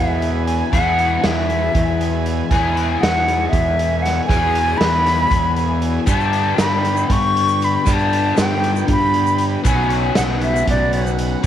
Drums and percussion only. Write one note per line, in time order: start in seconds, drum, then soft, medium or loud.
0.22 closed hi-hat soft
0.47 closed hi-hat medium
0.73 kick medium
0.73 closed hi-hat medium
0.99 closed hi-hat soft
1.24 snare medium
1.24 closed hi-hat medium
1.50 closed hi-hat medium
1.75 kick medium
1.75 closed hi-hat medium
2.01 closed hi-hat medium
2.26 closed hi-hat medium
2.51 kick medium
2.51 closed hi-hat medium
2.77 closed hi-hat medium
3.03 snare loud
3.03 closed hi-hat medium
3.28 closed hi-hat medium
3.53 kick medium
3.53 closed hi-hat medium
3.79 closed hi-hat medium
4.05 snare soft
4.05 closed hi-hat medium
4.29 kick medium
4.29 closed hi-hat medium
4.55 closed hi-hat soft
4.81 snare medium
4.81 closed hi-hat medium
5.06 snare soft
5.06 closed hi-hat medium
5.31 kick medium
5.31 closed hi-hat medium
5.56 closed hi-hat soft
5.82 closed hi-hat medium
6.07 kick medium
6.07 closed hi-hat medium
6.07 shaker medium
6.20 shaker soft
6.33 closed hi-hat soft
6.58 snare medium
6.58 closed hi-hat medium
6.58 shaker medium
6.85 closed hi-hat medium
6.85 shaker soft
6.97 shaker medium
7.10 kick medium
7.10 closed hi-hat medium
7.37 closed hi-hat medium
7.49 shaker medium
7.61 closed hi-hat medium
7.61 shaker soft
7.86 kick medium
7.86 closed hi-hat medium
7.86 shaker medium
7.99 shaker soft
8.13 closed hi-hat medium
8.37 snare loud
8.37 closed hi-hat medium
8.37 shaker medium
8.63 closed hi-hat medium
8.63 shaker soft
8.76 shaker medium
8.88 kick medium
8.88 closed hi-hat medium
9.14 closed hi-hat medium
9.27 shaker medium
9.38 closed hi-hat medium
9.38 shaker soft
9.65 kick medium
9.65 closed hi-hat medium
9.65 shaker medium
9.90 closed hi-hat soft
10.15 snare loud
10.15 closed hi-hat medium
10.15 shaker medium
10.41 closed hi-hat medium
10.41 shaker soft
10.56 shaker medium
10.67 kick medium
10.67 closed hi-hat medium
10.93 closed hi-hat medium
11.07 shaker medium
11.19 closed hi-hat medium
11.19 shaker soft